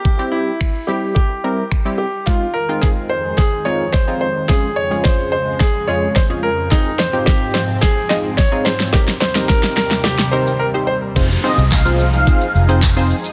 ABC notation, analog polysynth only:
X:1
M:4/4
L:1/16
Q:1/4=108
K:Fm
V:1 name="Analog polysynth"
[=EG] [G,CEG]2 z3 [G,CEG]2 z2 [G,CEB] z2 [G,CEG] z2 | [A,CEF] z2 [A,CEF]3 z4 [A,CEF] z2 [A,CEF] z2 | [F,,A,DFA] z2 [F,,A,DFA]3 z4 [F,,A,DFA] z2 [F,,A,DFA] z2 | [CEFA] z2 [CEFG]3 z4 [CEFA] z2 [CEFA] z2 |
[CEGB] z2 [CEGB]3 z4 [CEGB] z2 [CEGc] z2 | [CEFAc] z [CEFAc] z2 [CEFAc] z2 [CEFAc] z2 [CEFAc] z [CEFAc] z2 |]